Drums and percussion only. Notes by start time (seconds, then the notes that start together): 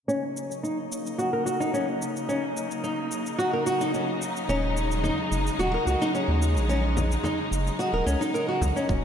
0.09 shaker
0.37 shaker
0.51 shaker
0.65 shaker
0.92 shaker
1.07 shaker
1.19 shaker
1.47 shaker
1.61 shaker
1.75 shaker
2.02 shaker
2.17 shaker
2.29 shaker
2.57 shaker
2.71 shaker
2.84 shaker
3.12 shaker
3.26 shaker
3.40 shaker
3.67 shaker
3.81 shaker
3.94 shaker
4.22 shaker
4.37 shaker
4.49 shaker
4.77 shaker
4.92 shaker
5.04 frame drum, shaker
5.32 shaker
5.47 shaker
5.60 shaker
5.87 shaker
6.02 shaker
6.15 shaker
6.42 shaker
6.57 shaker
6.70 shaker
6.97 frame drum, shaker
7.12 shaker
7.24 frame drum, shaker
7.53 shaker
7.67 shaker
7.80 shaker
8.08 shaker
8.22 shaker
8.35 shaker
8.62 frame drum, shaker
8.77 shaker
8.89 kick, shaker